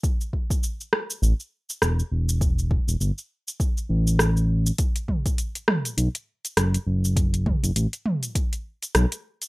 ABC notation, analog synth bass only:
X:1
M:4/4
L:1/16
Q:"Swing 16ths" 1/4=101
K:Clyd
V:1 name="Analog synth bass" clef=bass
z8 A,,, z3 E,,, z E,,,2- | E,,,2 z E,,, G,,, z4 z A,,,4- A,,, z | z8 B,,, z3 F,,, z F,,,2- | F,,,2 z F,,, A,,, z6 z B,,, z3 |]